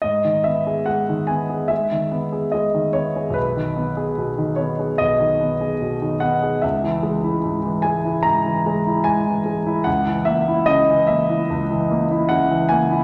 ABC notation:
X:1
M:4/4
L:1/16
Q:1/4=73
K:G#m
V:1 name="Grand piano"
d2 e2 f2 g2 e4 d2 c2 | B6 c2 d6 f2 | e6 g2 a4 g4 | f2 e2 d2 e6 f2 g2 |]
V:2 name="Grand piano" clef=bass
G,, D, B, G G, D, B, G G, D, B, G G, D, B, G | B,,, D, B, G B,, D, B, G B,,, D, B, G B,, D, B, G | C,, E, G, E G,, E, G, E G,, E, G, E G,, E, G, E | C,, E, A, E C, E, A, E C,, E, A, E C, E, A, E |]